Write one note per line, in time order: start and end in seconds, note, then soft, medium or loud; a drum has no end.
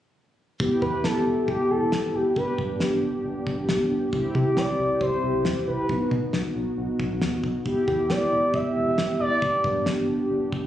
0.60 0.70 E1 loud
0.60 2.33 B3 medium
0.60 2.33 E4 medium
0.60 2.33 G4 medium
0.60 kick loud
0.82 0.92 E2 medium
0.82 1.06 B4 loud
0.82 kick medium
1.04 1.14 E1 loud
1.04 1.48 A4 loud
1.04 snare loud
1.26 1.36 E1 loud
1.48 1.58 E1 loud
1.48 1.72 G4 medium
1.48 kick medium
1.70 1.80 E1 medium
1.70 2.16 A4 loud
1.81 1.91 E1 loud
1.92 2.02 G1 loud
1.92 snare loud
2.14 2.24 E1 medium
2.14 2.36 G4 medium
2.36 2.46 G1 loud
2.36 4.09 B3 medium
2.36 4.09 D4 medium
2.36 4.09 G4 medium
2.36 2.78 B4 medium
2.36 kick loud
2.58 2.69 G2 loud
2.58 kick medium
2.80 2.91 G1 loud
2.80 snare loud
3.03 3.13 G1 medium
3.25 3.35 G1 loud
3.47 3.57 G1 loud
3.47 kick medium
3.58 3.68 G1 medium
3.69 3.79 B1 medium
3.69 snare loud
3.91 4.01 G1 loud
4.13 4.23 C2 loud
4.13 5.86 C4 medium
4.13 5.86 E4 medium
4.13 5.86 G4 medium
4.13 kick loud
4.35 4.45 C3 loud
4.35 4.59 G4 medium
4.35 kick medium
4.57 4.67 C2 loud
4.57 5.01 D5 loud
4.57 snare loud
4.79 4.89 C2 loud
5.01 5.11 C2 loud
5.01 5.63 C5 loud
5.01 kick medium
5.23 5.33 C2 medium
5.34 5.44 C2 loud
5.45 5.55 E2 medium
5.45 snare loud
5.67 5.77 C2 medium
5.67 6.30 B4 medium
5.89 5.99 B1 loud
5.89 7.62 B3 medium
5.89 7.62 D#4 medium
5.89 7.62 F#4 medium
5.89 kick loud
6.11 6.21 B2 loud
6.11 kick medium
6.33 6.44 B1 loud
6.33 snare loud
6.55 6.66 B1 loud
6.77 6.88 B1 loud
7.00 7.10 B1 loud
7.00 kick medium
7.10 7.21 B1 medium
7.22 7.32 D#2 medium
7.22 snare loud
7.44 7.54 B1 medium
7.44 kick medium
7.65 7.76 E1 medium
7.65 9.39 B3 medium
7.65 9.39 E4 medium
7.65 9.39 G4 medium
7.65 kick loud
7.88 7.98 E2 medium
7.88 8.08 G4 medium
7.88 kick medium
8.10 8.20 E1 loud
8.10 8.56 D5 loud
8.10 snare loud
8.32 8.42 E1 loud
8.54 8.64 E1 loud
8.54 9.20 E5 loud
8.54 kick medium
8.76 8.86 E1 medium
8.87 8.97 E1 loud
8.98 9.08 G1 loud
8.98 snare loud
9.20 9.30 E1 medium
9.20 9.82 D5 loud
9.42 9.52 G1 loud
9.42 10.67 B3 medium
9.42 10.67 D4 medium
9.42 10.67 G4 medium
9.42 kick loud
9.64 9.74 G2 loud
9.64 kick medium
9.86 9.96 G1 loud
9.86 snare loud
10.09 10.19 G1 medium
10.31 10.41 G1 medium
10.52 10.63 G1 loud
10.52 kick medium
10.64 10.67 G1 loud